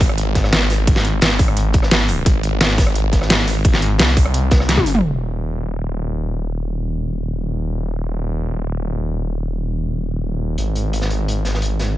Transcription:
Already playing: G#1
0.00 kick, closed hi-hat, open hi-hat
0.09 cross-stick
0.18 closed hi-hat
0.35 G#1, kick, snare, closed hi-hat
0.44 cross-stick, snare
0.52 snare, closed hi-hat
0.70 snare, closed hi-hat, open hi-hat
0.87 kick, closed hi-hat, open hi-hat
0.96 snare
1.05 closed hi-hat
1.21 G#1, snare, closed hi-hat
1.39 kick, closed hi-hat, open hi-hat
1.48 cross-stick
1.57 closed hi-hat
1.73 G#1, kick, closed hi-hat
1.83 cross-stick, snare
1.91 snare, closed hi-hat
2.08 closed hi-hat, open hi-hat
2.26 G#1, kick, closed hi-hat
2.43 closed hi-hat
2.61 snare, closed hi-hat
2.70 snare
2.78 kick, snare, closed hi-hat, open hi-hat
2.87 cross-stick
2.95 closed hi-hat
3.12 G#1, kick, snare, closed hi-hat
3.21 cross-stick, snare
3.30 snare, closed hi-hat
3.47 snare, closed hi-hat, open hi-hat
3.64 kick, closed hi-hat, open hi-hat
3.73 snare
3.82 closed hi-hat
3.99 C2, snare, closed hi-hat
4.17 kick, closed hi-hat, open hi-hat
4.25 cross-stick
4.34 closed hi-hat
4.51 kick, snare, closed hi-hat
4.60 cross-stick, snare
4.69 snare, closed hi-hat
4.77 kick, high tom
4.86 F#1, closed hi-hat, open hi-hat
4.95 mid tom
5.03 D#1
10.58 G#1, closed hi-hat
10.76 closed hi-hat
10.93 closed hi-hat
11.01 snare
11.10 closed hi-hat
11.28 closed hi-hat
11.45 snare, closed hi-hat
11.54 snare
11.62 closed hi-hat
11.79 snare, closed hi-hat

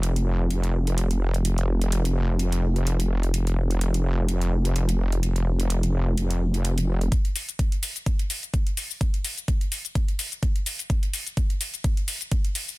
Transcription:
Already playing: F1
0.03 closed hi-hat
0.16 closed hi-hat
0.51 closed hi-hat
0.64 closed hi-hat
0.87 closed hi-hat
0.98 closed hi-hat
1.11 closed hi-hat
1.34 closed hi-hat
1.45 closed hi-hat
1.58 closed hi-hat
1.82 closed hi-hat
1.92 closed hi-hat
2.05 closed hi-hat
2.39 closed hi-hat
2.52 closed hi-hat
2.76 closed hi-hat
2.87 closed hi-hat
3.00 closed hi-hat
3.23 closed hi-hat
3.34 closed hi-hat
3.47 closed hi-hat
3.71 closed hi-hat
3.81 closed hi-hat
3.94 closed hi-hat
4.29 closed hi-hat
4.41 closed hi-hat
4.65 closed hi-hat
4.76 closed hi-hat
4.89 closed hi-hat
5.12 closed hi-hat
5.23 closed hi-hat
5.36 closed hi-hat
5.60 closed hi-hat
5.70 closed hi-hat
5.83 closed hi-hat
6.17 closed hi-hat
6.31 closed hi-hat
6.54 closed hi-hat
6.65 closed hi-hat
6.78 closed hi-hat
7.01 closed hi-hat
7.12 kick, closed hi-hat, shaker
7.25 closed hi-hat
7.36 open hi-hat, shaker
7.49 closed hi-hat, shaker
7.59 kick, closed hi-hat, shaker
7.72 closed hi-hat
7.83 open hi-hat, shaker
7.96 closed hi-hat, shaker
8.06 kick, closed hi-hat, shaker
8.19 closed hi-hat
8.30 open hi-hat, shaker
8.43 closed hi-hat, shaker
8.54 kick, closed hi-hat, shaker
8.67 closed hi-hat
8.77 open hi-hat, shaker
8.91 shaker
9.01 kick, closed hi-hat, shaker
9.14 closed hi-hat
9.25 open hi-hat, shaker
9.38 closed hi-hat, shaker
9.48 kick, closed hi-hat, shaker
9.61 closed hi-hat
9.72 open hi-hat, shaker
9.85 closed hi-hat, shaker
9.95 kick, closed hi-hat, shaker
10.08 closed hi-hat
10.19 open hi-hat, shaker
10.32 closed hi-hat, shaker
10.43 kick, closed hi-hat, shaker
10.56 closed hi-hat
10.66 open hi-hat, shaker
10.79 closed hi-hat, shaker
10.90 kick, closed hi-hat, shaker
11.03 closed hi-hat
11.13 open hi-hat, shaker
11.26 closed hi-hat, shaker
11.37 kick, closed hi-hat, shaker
11.50 closed hi-hat
11.61 open hi-hat, shaker
11.74 closed hi-hat, shaker
11.84 kick, closed hi-hat, shaker
11.97 closed hi-hat
12.08 open hi-hat, shaker
12.21 closed hi-hat, shaker
12.32 kick, closed hi-hat, shaker
12.45 closed hi-hat
12.55 open hi-hat, shaker
12.68 shaker

